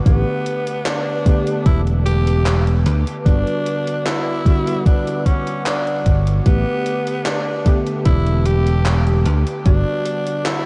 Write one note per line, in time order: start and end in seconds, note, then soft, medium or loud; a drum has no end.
0.00 9.62 B4 medium
0.00 3.22 D6 loud
0.05 0.23 A1 loud
0.05 1.21 D3 medium
0.05 1.21 A3 medium
0.05 0.87 B3 loud
0.05 1.22 B3 medium
0.05 1.22 G4 medium
0.05 3.23 A5 medium
0.05 kick loud
0.05 closed hi-hat medium
0.46 closed hi-hat medium
0.67 closed hi-hat medium
0.86 1.65 D4 loud
0.86 clap loud
0.86 closed hi-hat medium
1.25 3.21 D3 loud
1.25 3.21 A3 medium
1.25 3.22 B3 medium
1.25 3.22 G4 loud
1.25 kick loud
1.25 closed hi-hat medium
1.47 closed hi-hat medium
1.66 2.86 E1 loud
1.66 1.82 E4 loud
1.66 kick loud
1.66 closed hi-hat medium
1.87 closed hi-hat soft
2.06 2.82 G4 loud
2.06 closed hi-hat medium
2.27 closed hi-hat medium
2.46 clap loud
2.46 closed hi-hat medium
2.67 closed hi-hat soft
2.86 3.03 D2 medium
2.86 closed hi-hat medium
3.07 closed hi-hat medium
3.25 3.43 G1 loud
3.25 4.41 D3 medium
3.25 4.41 G3 medium
3.25 4.42 B3 medium
3.25 4.07 D4 loud
3.25 4.42 F#4 medium
3.25 6.43 F#5 medium
3.25 9.62 D6 loud
3.25 kick loud
3.25 closed hi-hat medium
3.47 closed hi-hat soft
3.66 closed hi-hat medium
3.87 closed hi-hat medium
4.06 4.86 E4 loud
4.06 clap loud
4.06 closed hi-hat medium
4.45 6.41 D3 medium
4.45 6.41 G3 medium
4.45 6.42 B3 medium
4.45 6.42 F#4 loud
4.45 kick loud
4.45 closed hi-hat medium
4.67 closed hi-hat medium
4.86 5.27 D4 loud
4.86 kick loud
4.86 closed hi-hat medium
5.07 closed hi-hat soft
5.26 5.65 C#4 medium
5.26 kick medium
5.26 closed hi-hat medium
5.47 closed hi-hat soft
5.66 6.23 D4 loud
5.66 clap loud
5.66 closed hi-hat medium
5.87 closed hi-hat soft
6.06 6.39 G1 medium
6.06 kick medium
6.06 closed hi-hat medium
6.27 closed hi-hat medium
6.45 6.63 A1 loud
6.45 7.61 D3 medium
6.45 7.61 A3 medium
6.45 7.27 B3 loud
6.45 7.62 B3 medium
6.45 7.62 G4 medium
6.45 9.63 A5 medium
6.45 kick loud
6.45 closed hi-hat medium
6.86 closed hi-hat medium
7.07 closed hi-hat medium
7.26 7.80 D4 loud
7.26 clap loud
7.26 closed hi-hat medium
7.65 9.61 D3 loud
7.65 9.61 A3 medium
7.65 9.62 B3 medium
7.65 9.62 G4 loud
7.65 kick loud
7.65 closed hi-hat medium
7.87 closed hi-hat soft
8.05 9.26 E1 loud
8.05 8.48 E4 loud
8.05 kick loud
8.05 closed hi-hat medium
8.27 closed hi-hat soft
8.46 9.26 G4 loud
8.46 closed hi-hat medium
8.67 closed hi-hat medium
8.86 clap loud
8.86 closed hi-hat medium
9.07 closed hi-hat soft
9.26 9.43 D2 medium
9.26 closed hi-hat medium
9.47 closed hi-hat soft
9.64 9.83 G1 loud
9.64 10.66 D3 medium
9.64 10.66 G3 medium
9.64 10.66 B3 medium
9.64 10.48 D4 loud
9.64 10.66 F#4 medium
9.64 10.66 B4 medium
9.64 10.66 F#5 medium
9.64 10.66 D6 loud
9.64 kick loud
9.64 closed hi-hat medium
10.06 closed hi-hat medium
10.27 closed hi-hat medium
10.46 10.66 E4 loud
10.46 clap loud
10.46 closed hi-hat medium